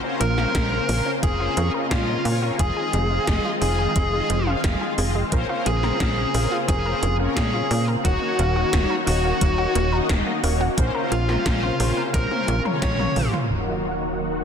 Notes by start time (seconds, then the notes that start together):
Already playing: C#3 A#3 C4 F4
0.04 C#4 A#4 C5
0.21 A#1 A#3 A#4 A#5, closed hi-hat
0.38 C#4 F4 A#4 C5, snare
0.55 A#1 A#3 C#4 A#4 C5, kick, snare, closed hi-hat
0.72 A#4
0.89 A#1 A#3 C#4 A#4 C5, open hi-hat
1.06 C#4
1.23 F1 A#3 C#4 G#4 A#4 C5 G#5, kick, closed hi-hat
1.40 C#4 F4 A#4 C5
1.57 F2 A#3 C#4 A#4 C#5, closed hi-hat
1.74 C#4 A#4 D#5
1.91 A#2 A#3 C#4 F4 A#4 D#5 F5, kick, snare, closed hi-hat
2.08 C#4
2.25 A#2 A#3 C#4 A#4 C#5, open hi-hat
2.42 F4
2.59 F1 D#3 G#3 F4 G#4 D#5 G#5, kick, closed hi-hat
2.76 F4 G#4 D#5
2.93 F1 G#3, closed hi-hat
3.11 G#3 F4 G#4 D#5
3.27 F1 G#3 F4 G#4 D#5, kick, snare, closed hi-hat
3.45 F4
3.61 F1 G#3 F4 G#4 D#5 G#5, open hi-hat
3.79 G#4
3.96 F1 G#3 F4 G#4 D#5, kick, closed hi-hat
4.13 G#3 F4 G#4 D#5
4.30 F1 G#3, closed hi-hat
4.47 F4 G#4 F5
4.64 F1 G#3 F4 G#4 F5, kick, snare, closed hi-hat
4.81 G#4
4.98 F1 G#3 F4 G#4 D#5, open hi-hat
5.15 G#3
5.32 A#1 C#3 A#3 C#4 F4 A#4 C5, kick, closed hi-hat
5.49 C#4 F4 A#4 C5
5.66 A#1 A#3 G#4 G#5, closed hi-hat
5.83 C#4 A#4 C5, snare
6.00 A#1 A#3 C#4 A#4 C5, kick, snare, closed hi-hat
6.18 A#3
6.34 A#1 A#3 C#4 A#4 C5, open hi-hat
6.52 F4
6.68 F1 A#3 C#4 G#4 A#4 C5 G#5, kick, closed hi-hat
6.86 C#4 A#4 C5
7.02 F1 A#3, closed hi-hat
7.20 A#3 C#4 A#4 C#5
7.37 A#2 A#3 C#4 G#4 A#4 C#5 G#5, kick, snare, closed hi-hat
7.54 F4
7.71 A#2 A#3 C#4 A#4 C5, open hi-hat
7.88 A#4
8.05 D#1 D#3 A#3 C#4 D#4 F#4 C#5 F#5, kick, closed hi-hat
8.22 A#3 D#4 F#4 C#5
8.39 D#1 A#3, closed hi-hat
8.56 D#4 F#4 C#5
8.73 D#1 A#3 D#4 F#4 C#5, kick, snare, closed hi-hat
8.90 A#4
9.07 D#1 A#3 D#4 F#4 C#5 F#5, open hi-hat
9.24 A#3
9.41 D#1 A#3 D#4 F#4 C#5, kick, closed hi-hat
9.58 D#4 F#4 C#5
9.75 D#1 A#3, closed hi-hat
9.92 D#4 F#4 A#4 D#5
10.09 D#1 A#3 D#4 F#4 D#5, kick, snare, closed hi-hat
10.27 A#3
10.43 D#1 A#3 D#4 F#4 C#5, open hi-hat
10.61 F#4
10.77 A#1 C3 C#3 A#3 C#4 F4 A#4 C5, kick, closed hi-hat
10.95 C#4 A#4 C5
11.12 A#1 A#3 F4 F5, closed hi-hat
11.29 A#3 C#4 A#4 C5, snare
11.46 A#1 A#3 C#4 A#4 C5, kick, snare, closed hi-hat
11.63 F4
11.80 A#1 A#3 C#4 A#4 C5, open hi-hat
11.97 A#4
12.14 A#1 A#3 C#4 A#4 C5 A#5, kick, closed hi-hat, high tom
12.31 A#3 C#4 A#4 C5, high tom
12.48 A#1 C#4, closed hi-hat
12.65 C#4 A#4 C#5, mid tom
12.82 A#1 C#4 A#4 C#5 C#6, kick, snare, closed hi-hat, mid tom
12.99 A#4, mid tom
13.16 A#1 C#4 F4 A#4 C5, mid tom, open hi-hat
13.33 F4, mid tom
13.50 D#1 D#3 F#3 A#3 D#4 F#4 A#4
13.67 A#3
13.84 A#3
14.01 A#4
14.19 A#3
14.36 D#5